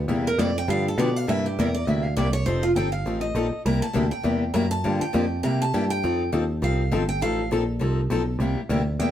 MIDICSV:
0, 0, Header, 1, 5, 480
1, 0, Start_track
1, 0, Tempo, 297177
1, 142, Time_signature, 4, 2, 24, 8
1, 14714, End_track
2, 0, Start_track
2, 0, Title_t, "Steel-string acoustic guitar"
2, 0, Program_c, 0, 25
2, 440, Note_on_c, 0, 70, 89
2, 626, Note_off_c, 0, 70, 0
2, 634, Note_on_c, 0, 74, 89
2, 897, Note_off_c, 0, 74, 0
2, 934, Note_on_c, 0, 79, 107
2, 1113, Note_off_c, 0, 79, 0
2, 1133, Note_on_c, 0, 77, 90
2, 1386, Note_off_c, 0, 77, 0
2, 1427, Note_on_c, 0, 69, 81
2, 1599, Note_off_c, 0, 69, 0
2, 1606, Note_on_c, 0, 74, 79
2, 1879, Note_off_c, 0, 74, 0
2, 1879, Note_on_c, 0, 77, 117
2, 2065, Note_off_c, 0, 77, 0
2, 2083, Note_on_c, 0, 76, 89
2, 2341, Note_off_c, 0, 76, 0
2, 2358, Note_on_c, 0, 67, 51
2, 2544, Note_off_c, 0, 67, 0
2, 2577, Note_on_c, 0, 70, 78
2, 2819, Note_on_c, 0, 74, 88
2, 2828, Note_off_c, 0, 70, 0
2, 3030, Note_off_c, 0, 74, 0
2, 3030, Note_on_c, 0, 76, 82
2, 3288, Note_off_c, 0, 76, 0
2, 3288, Note_on_c, 0, 77, 105
2, 3488, Note_off_c, 0, 77, 0
2, 3497, Note_on_c, 0, 74, 90
2, 3758, Note_off_c, 0, 74, 0
2, 3764, Note_on_c, 0, 73, 100
2, 3966, Note_off_c, 0, 73, 0
2, 3970, Note_on_c, 0, 72, 88
2, 4243, Note_off_c, 0, 72, 0
2, 4247, Note_on_c, 0, 65, 86
2, 4371, Note_off_c, 0, 65, 0
2, 4460, Note_on_c, 0, 79, 90
2, 4710, Note_off_c, 0, 79, 0
2, 4716, Note_on_c, 0, 77, 77
2, 5172, Note_off_c, 0, 77, 0
2, 5185, Note_on_c, 0, 75, 86
2, 5833, Note_off_c, 0, 75, 0
2, 5909, Note_on_c, 0, 82, 96
2, 6166, Note_off_c, 0, 82, 0
2, 6172, Note_on_c, 0, 81, 99
2, 6620, Note_off_c, 0, 81, 0
2, 6643, Note_on_c, 0, 79, 81
2, 7283, Note_off_c, 0, 79, 0
2, 7329, Note_on_c, 0, 82, 90
2, 7599, Note_off_c, 0, 82, 0
2, 7605, Note_on_c, 0, 81, 109
2, 8056, Note_off_c, 0, 81, 0
2, 8096, Note_on_c, 0, 79, 95
2, 8730, Note_off_c, 0, 79, 0
2, 8774, Note_on_c, 0, 82, 92
2, 9045, Note_off_c, 0, 82, 0
2, 9071, Note_on_c, 0, 81, 94
2, 9510, Note_off_c, 0, 81, 0
2, 9535, Note_on_c, 0, 79, 94
2, 10170, Note_off_c, 0, 79, 0
2, 10722, Note_on_c, 0, 77, 77
2, 11416, Note_off_c, 0, 77, 0
2, 11446, Note_on_c, 0, 79, 107
2, 11647, Note_off_c, 0, 79, 0
2, 11664, Note_on_c, 0, 77, 89
2, 12108, Note_off_c, 0, 77, 0
2, 14531, Note_on_c, 0, 79, 92
2, 14714, Note_off_c, 0, 79, 0
2, 14714, End_track
3, 0, Start_track
3, 0, Title_t, "Steel-string acoustic guitar"
3, 0, Program_c, 1, 25
3, 135, Note_on_c, 1, 48, 73
3, 135, Note_on_c, 1, 55, 68
3, 148, Note_on_c, 1, 58, 76
3, 148, Note_on_c, 1, 64, 75
3, 150, Note_on_c, 1, 67, 81
3, 446, Note_off_c, 1, 48, 0
3, 446, Note_off_c, 1, 55, 0
3, 453, Note_off_c, 1, 58, 0
3, 453, Note_off_c, 1, 64, 0
3, 453, Note_off_c, 1, 67, 0
3, 624, Note_on_c, 1, 48, 82
3, 626, Note_on_c, 1, 58, 85
3, 632, Note_on_c, 1, 64, 96
3, 633, Note_on_c, 1, 55, 92
3, 635, Note_on_c, 1, 67, 92
3, 792, Note_off_c, 1, 48, 0
3, 792, Note_off_c, 1, 58, 0
3, 796, Note_off_c, 1, 55, 0
3, 796, Note_off_c, 1, 64, 0
3, 797, Note_off_c, 1, 67, 0
3, 1092, Note_on_c, 1, 50, 62
3, 1104, Note_on_c, 1, 53, 69
3, 1108, Note_on_c, 1, 59, 70
3, 1111, Note_on_c, 1, 62, 68
3, 1123, Note_on_c, 1, 67, 68
3, 1404, Note_off_c, 1, 50, 0
3, 1410, Note_off_c, 1, 53, 0
3, 1412, Note_off_c, 1, 59, 0
3, 1413, Note_off_c, 1, 62, 0
3, 1419, Note_off_c, 1, 67, 0
3, 1584, Note_on_c, 1, 50, 89
3, 1586, Note_on_c, 1, 53, 82
3, 1589, Note_on_c, 1, 62, 89
3, 1592, Note_on_c, 1, 59, 84
3, 1599, Note_on_c, 1, 67, 98
3, 1751, Note_off_c, 1, 50, 0
3, 1752, Note_off_c, 1, 53, 0
3, 1753, Note_off_c, 1, 62, 0
3, 1755, Note_off_c, 1, 59, 0
3, 1759, Note_off_c, 1, 67, 0
3, 2055, Note_on_c, 1, 48, 65
3, 2067, Note_on_c, 1, 55, 73
3, 2070, Note_on_c, 1, 58, 71
3, 2079, Note_on_c, 1, 64, 76
3, 2085, Note_on_c, 1, 67, 77
3, 2365, Note_off_c, 1, 48, 0
3, 2371, Note_off_c, 1, 55, 0
3, 2373, Note_off_c, 1, 58, 0
3, 2377, Note_off_c, 1, 64, 0
3, 2380, Note_off_c, 1, 67, 0
3, 2562, Note_on_c, 1, 48, 80
3, 2566, Note_on_c, 1, 55, 85
3, 2575, Note_on_c, 1, 58, 86
3, 2576, Note_on_c, 1, 64, 94
3, 2576, Note_on_c, 1, 67, 92
3, 2720, Note_off_c, 1, 48, 0
3, 2722, Note_off_c, 1, 55, 0
3, 2726, Note_off_c, 1, 58, 0
3, 2726, Note_off_c, 1, 64, 0
3, 2727, Note_off_c, 1, 67, 0
3, 3027, Note_on_c, 1, 48, 59
3, 3029, Note_on_c, 1, 55, 62
3, 3040, Note_on_c, 1, 58, 61
3, 3047, Note_on_c, 1, 67, 60
3, 3048, Note_on_c, 1, 64, 68
3, 3331, Note_off_c, 1, 48, 0
3, 3332, Note_off_c, 1, 55, 0
3, 3337, Note_off_c, 1, 58, 0
3, 3341, Note_off_c, 1, 64, 0
3, 3341, Note_off_c, 1, 67, 0
3, 3503, Note_on_c, 1, 55, 86
3, 3503, Note_on_c, 1, 58, 91
3, 3505, Note_on_c, 1, 48, 80
3, 3519, Note_on_c, 1, 64, 84
3, 3523, Note_on_c, 1, 67, 78
3, 3670, Note_off_c, 1, 55, 0
3, 3670, Note_off_c, 1, 58, 0
3, 3671, Note_off_c, 1, 48, 0
3, 3678, Note_off_c, 1, 64, 0
3, 3680, Note_off_c, 1, 67, 0
3, 3990, Note_on_c, 1, 53, 69
3, 3993, Note_on_c, 1, 60, 71
3, 4004, Note_on_c, 1, 69, 72
3, 4008, Note_on_c, 1, 63, 74
3, 4292, Note_off_c, 1, 53, 0
3, 4294, Note_off_c, 1, 60, 0
3, 4299, Note_off_c, 1, 69, 0
3, 4301, Note_off_c, 1, 63, 0
3, 4460, Note_on_c, 1, 60, 88
3, 4468, Note_on_c, 1, 53, 77
3, 4469, Note_on_c, 1, 63, 81
3, 4481, Note_on_c, 1, 69, 90
3, 4628, Note_off_c, 1, 60, 0
3, 4632, Note_off_c, 1, 53, 0
3, 4633, Note_off_c, 1, 63, 0
3, 4639, Note_off_c, 1, 69, 0
3, 4937, Note_on_c, 1, 53, 59
3, 4947, Note_on_c, 1, 60, 61
3, 4955, Note_on_c, 1, 63, 67
3, 4960, Note_on_c, 1, 69, 69
3, 5245, Note_off_c, 1, 53, 0
3, 5251, Note_off_c, 1, 60, 0
3, 5255, Note_off_c, 1, 63, 0
3, 5257, Note_off_c, 1, 69, 0
3, 5414, Note_on_c, 1, 53, 79
3, 5419, Note_on_c, 1, 60, 80
3, 5421, Note_on_c, 1, 63, 82
3, 5431, Note_on_c, 1, 69, 93
3, 5585, Note_off_c, 1, 53, 0
3, 5587, Note_off_c, 1, 60, 0
3, 5588, Note_off_c, 1, 63, 0
3, 5593, Note_off_c, 1, 69, 0
3, 5912, Note_on_c, 1, 48, 66
3, 5913, Note_on_c, 1, 55, 68
3, 5916, Note_on_c, 1, 58, 74
3, 5917, Note_on_c, 1, 64, 72
3, 5923, Note_on_c, 1, 67, 75
3, 6213, Note_off_c, 1, 48, 0
3, 6214, Note_off_c, 1, 55, 0
3, 6215, Note_off_c, 1, 58, 0
3, 6215, Note_off_c, 1, 64, 0
3, 6219, Note_off_c, 1, 67, 0
3, 6354, Note_on_c, 1, 48, 90
3, 6367, Note_on_c, 1, 55, 81
3, 6370, Note_on_c, 1, 58, 91
3, 6379, Note_on_c, 1, 64, 92
3, 6387, Note_on_c, 1, 67, 88
3, 6535, Note_off_c, 1, 48, 0
3, 6541, Note_off_c, 1, 55, 0
3, 6543, Note_off_c, 1, 58, 0
3, 6547, Note_off_c, 1, 64, 0
3, 6551, Note_off_c, 1, 67, 0
3, 6838, Note_on_c, 1, 48, 64
3, 6849, Note_on_c, 1, 55, 69
3, 6856, Note_on_c, 1, 58, 69
3, 6860, Note_on_c, 1, 67, 67
3, 6861, Note_on_c, 1, 64, 65
3, 7156, Note_off_c, 1, 48, 0
3, 7161, Note_off_c, 1, 55, 0
3, 7165, Note_off_c, 1, 58, 0
3, 7167, Note_off_c, 1, 64, 0
3, 7167, Note_off_c, 1, 67, 0
3, 7326, Note_on_c, 1, 48, 80
3, 7339, Note_on_c, 1, 55, 76
3, 7343, Note_on_c, 1, 58, 87
3, 7356, Note_on_c, 1, 67, 92
3, 7357, Note_on_c, 1, 64, 84
3, 7501, Note_off_c, 1, 48, 0
3, 7507, Note_off_c, 1, 55, 0
3, 7509, Note_off_c, 1, 58, 0
3, 7516, Note_off_c, 1, 64, 0
3, 7516, Note_off_c, 1, 67, 0
3, 7816, Note_on_c, 1, 50, 71
3, 7820, Note_on_c, 1, 53, 65
3, 7820, Note_on_c, 1, 58, 76
3, 7825, Note_on_c, 1, 62, 67
3, 7833, Note_on_c, 1, 67, 76
3, 8125, Note_off_c, 1, 50, 0
3, 8127, Note_off_c, 1, 53, 0
3, 8127, Note_off_c, 1, 58, 0
3, 8129, Note_off_c, 1, 62, 0
3, 8133, Note_off_c, 1, 67, 0
3, 8285, Note_on_c, 1, 50, 84
3, 8292, Note_on_c, 1, 53, 78
3, 8298, Note_on_c, 1, 58, 89
3, 8307, Note_on_c, 1, 62, 90
3, 8316, Note_on_c, 1, 67, 93
3, 8460, Note_off_c, 1, 50, 0
3, 8463, Note_off_c, 1, 53, 0
3, 8467, Note_off_c, 1, 58, 0
3, 8471, Note_off_c, 1, 62, 0
3, 8476, Note_off_c, 1, 67, 0
3, 8793, Note_on_c, 1, 55, 63
3, 8798, Note_on_c, 1, 48, 60
3, 8807, Note_on_c, 1, 58, 59
3, 8808, Note_on_c, 1, 64, 67
3, 8810, Note_on_c, 1, 67, 69
3, 9093, Note_off_c, 1, 55, 0
3, 9096, Note_off_c, 1, 48, 0
3, 9100, Note_off_c, 1, 58, 0
3, 9101, Note_off_c, 1, 64, 0
3, 9102, Note_off_c, 1, 67, 0
3, 9264, Note_on_c, 1, 48, 82
3, 9268, Note_on_c, 1, 58, 80
3, 9274, Note_on_c, 1, 55, 89
3, 9275, Note_on_c, 1, 64, 89
3, 9279, Note_on_c, 1, 67, 89
3, 9430, Note_off_c, 1, 48, 0
3, 9432, Note_off_c, 1, 58, 0
3, 9435, Note_off_c, 1, 55, 0
3, 9435, Note_off_c, 1, 64, 0
3, 9437, Note_off_c, 1, 67, 0
3, 9746, Note_on_c, 1, 53, 71
3, 9751, Note_on_c, 1, 60, 70
3, 9755, Note_on_c, 1, 63, 68
3, 9767, Note_on_c, 1, 69, 81
3, 10050, Note_off_c, 1, 53, 0
3, 10052, Note_off_c, 1, 60, 0
3, 10054, Note_off_c, 1, 63, 0
3, 10060, Note_off_c, 1, 69, 0
3, 10216, Note_on_c, 1, 53, 92
3, 10224, Note_on_c, 1, 60, 82
3, 10227, Note_on_c, 1, 69, 88
3, 10228, Note_on_c, 1, 63, 81
3, 10386, Note_off_c, 1, 53, 0
3, 10390, Note_off_c, 1, 60, 0
3, 10392, Note_off_c, 1, 63, 0
3, 10392, Note_off_c, 1, 69, 0
3, 10690, Note_on_c, 1, 53, 62
3, 10703, Note_on_c, 1, 60, 67
3, 10706, Note_on_c, 1, 63, 65
3, 10713, Note_on_c, 1, 69, 68
3, 11002, Note_off_c, 1, 53, 0
3, 11008, Note_off_c, 1, 60, 0
3, 11010, Note_off_c, 1, 63, 0
3, 11013, Note_off_c, 1, 69, 0
3, 11169, Note_on_c, 1, 53, 80
3, 11175, Note_on_c, 1, 63, 85
3, 11177, Note_on_c, 1, 60, 84
3, 11192, Note_on_c, 1, 69, 88
3, 11343, Note_off_c, 1, 53, 0
3, 11346, Note_off_c, 1, 60, 0
3, 11346, Note_off_c, 1, 63, 0
3, 11354, Note_off_c, 1, 69, 0
3, 11653, Note_on_c, 1, 53, 71
3, 11660, Note_on_c, 1, 60, 70
3, 11662, Note_on_c, 1, 63, 74
3, 11664, Note_on_c, 1, 69, 80
3, 11963, Note_off_c, 1, 53, 0
3, 11967, Note_off_c, 1, 60, 0
3, 11968, Note_off_c, 1, 63, 0
3, 11969, Note_off_c, 1, 69, 0
3, 12131, Note_on_c, 1, 53, 79
3, 12150, Note_on_c, 1, 60, 82
3, 12152, Note_on_c, 1, 63, 87
3, 12153, Note_on_c, 1, 69, 100
3, 12303, Note_off_c, 1, 53, 0
3, 12313, Note_off_c, 1, 60, 0
3, 12314, Note_off_c, 1, 63, 0
3, 12315, Note_off_c, 1, 69, 0
3, 12588, Note_on_c, 1, 53, 62
3, 12609, Note_on_c, 1, 60, 67
3, 12615, Note_on_c, 1, 63, 68
3, 12615, Note_on_c, 1, 69, 74
3, 12911, Note_off_c, 1, 53, 0
3, 12922, Note_off_c, 1, 60, 0
3, 12925, Note_off_c, 1, 63, 0
3, 12925, Note_off_c, 1, 69, 0
3, 13087, Note_on_c, 1, 53, 79
3, 13092, Note_on_c, 1, 60, 84
3, 13107, Note_on_c, 1, 63, 94
3, 13112, Note_on_c, 1, 69, 98
3, 13262, Note_off_c, 1, 53, 0
3, 13264, Note_off_c, 1, 60, 0
3, 13272, Note_off_c, 1, 63, 0
3, 13274, Note_off_c, 1, 69, 0
3, 13566, Note_on_c, 1, 48, 69
3, 13574, Note_on_c, 1, 58, 71
3, 13578, Note_on_c, 1, 55, 66
3, 13589, Note_on_c, 1, 64, 77
3, 13590, Note_on_c, 1, 67, 74
3, 13880, Note_off_c, 1, 48, 0
3, 13885, Note_off_c, 1, 58, 0
3, 13887, Note_off_c, 1, 55, 0
3, 13892, Note_off_c, 1, 64, 0
3, 13892, Note_off_c, 1, 67, 0
3, 14043, Note_on_c, 1, 48, 79
3, 14053, Note_on_c, 1, 58, 83
3, 14054, Note_on_c, 1, 55, 88
3, 14063, Note_on_c, 1, 64, 90
3, 14072, Note_on_c, 1, 67, 91
3, 14220, Note_off_c, 1, 48, 0
3, 14225, Note_off_c, 1, 58, 0
3, 14226, Note_off_c, 1, 55, 0
3, 14230, Note_off_c, 1, 64, 0
3, 14235, Note_off_c, 1, 67, 0
3, 14540, Note_on_c, 1, 48, 60
3, 14554, Note_on_c, 1, 55, 59
3, 14562, Note_on_c, 1, 58, 68
3, 14563, Note_on_c, 1, 64, 67
3, 14564, Note_on_c, 1, 67, 75
3, 14714, Note_off_c, 1, 48, 0
3, 14714, Note_off_c, 1, 55, 0
3, 14714, Note_off_c, 1, 58, 0
3, 14714, Note_off_c, 1, 64, 0
3, 14714, Note_off_c, 1, 67, 0
3, 14714, End_track
4, 0, Start_track
4, 0, Title_t, "Picked electric bass"
4, 0, Program_c, 2, 34
4, 131, Note_on_c, 2, 40, 79
4, 601, Note_off_c, 2, 40, 0
4, 621, Note_on_c, 2, 41, 88
4, 1086, Note_off_c, 2, 41, 0
4, 1103, Note_on_c, 2, 43, 84
4, 1567, Note_off_c, 2, 43, 0
4, 1578, Note_on_c, 2, 47, 92
4, 2044, Note_off_c, 2, 47, 0
4, 2073, Note_on_c, 2, 43, 78
4, 2532, Note_off_c, 2, 43, 0
4, 2564, Note_on_c, 2, 40, 84
4, 3017, Note_off_c, 2, 40, 0
4, 3025, Note_on_c, 2, 38, 79
4, 3487, Note_off_c, 2, 38, 0
4, 3514, Note_on_c, 2, 36, 85
4, 3965, Note_off_c, 2, 36, 0
4, 3974, Note_on_c, 2, 29, 78
4, 4442, Note_off_c, 2, 29, 0
4, 4452, Note_on_c, 2, 31, 85
4, 4920, Note_off_c, 2, 31, 0
4, 4943, Note_on_c, 2, 33, 78
4, 5397, Note_off_c, 2, 33, 0
4, 5407, Note_on_c, 2, 34, 84
4, 5670, Note_off_c, 2, 34, 0
4, 5905, Note_on_c, 2, 36, 85
4, 6160, Note_off_c, 2, 36, 0
4, 6394, Note_on_c, 2, 38, 86
4, 6645, Note_off_c, 2, 38, 0
4, 6852, Note_on_c, 2, 40, 80
4, 7320, Note_off_c, 2, 40, 0
4, 7336, Note_on_c, 2, 42, 87
4, 7802, Note_off_c, 2, 42, 0
4, 7840, Note_on_c, 2, 43, 78
4, 8088, Note_off_c, 2, 43, 0
4, 8310, Note_on_c, 2, 41, 89
4, 8769, Note_off_c, 2, 41, 0
4, 8784, Note_on_c, 2, 48, 81
4, 9247, Note_off_c, 2, 48, 0
4, 9276, Note_on_c, 2, 43, 90
4, 9732, Note_off_c, 2, 43, 0
4, 9755, Note_on_c, 2, 41, 80
4, 10212, Note_off_c, 2, 41, 0
4, 10221, Note_on_c, 2, 39, 88
4, 10685, Note_off_c, 2, 39, 0
4, 10698, Note_on_c, 2, 36, 85
4, 11164, Note_off_c, 2, 36, 0
4, 11179, Note_on_c, 2, 31, 92
4, 11644, Note_off_c, 2, 31, 0
4, 11672, Note_on_c, 2, 33, 82
4, 12131, Note_off_c, 2, 33, 0
4, 12144, Note_on_c, 2, 34, 88
4, 12607, Note_off_c, 2, 34, 0
4, 12622, Note_on_c, 2, 36, 78
4, 13074, Note_off_c, 2, 36, 0
4, 13084, Note_on_c, 2, 35, 85
4, 13538, Note_off_c, 2, 35, 0
4, 13547, Note_on_c, 2, 36, 83
4, 13820, Note_off_c, 2, 36, 0
4, 14042, Note_on_c, 2, 38, 84
4, 14516, Note_off_c, 2, 38, 0
4, 14528, Note_on_c, 2, 40, 84
4, 14714, Note_off_c, 2, 40, 0
4, 14714, End_track
5, 0, Start_track
5, 0, Title_t, "Muted picked electric bass strokes"
5, 5697, Note_on_c, 9, 29, 38
5, 5859, Note_off_c, 9, 29, 0
5, 6197, Note_on_c, 9, 29, 37
5, 6358, Note_off_c, 9, 29, 0
5, 6662, Note_on_c, 9, 29, 41
5, 6823, Note_off_c, 9, 29, 0
5, 8107, Note_on_c, 9, 29, 42
5, 8269, Note_off_c, 9, 29, 0
5, 13845, Note_on_c, 9, 29, 42
5, 14007, Note_off_c, 9, 29, 0
5, 14714, End_track
0, 0, End_of_file